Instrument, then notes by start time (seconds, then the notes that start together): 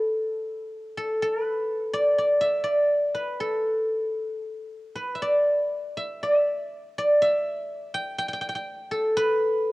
guzheng
Already playing: A4 B4 D5 E5
0.97 A4
1.22 A4
1.43 B4
1.93 D5
2.18 D5
2.41 E5
2.64 D5
3.14 B4
3.40 A4
4.95 B4
5.15 E5
5.22 D5
5.97 E5
6.23 E5
6.98 D5
7.22 E5
7.94 G5
8.19 G5
8.29 G5
8.33 G5
8.41 G5
8.49 G5
8.55 G5
8.91 A4
9.17 B4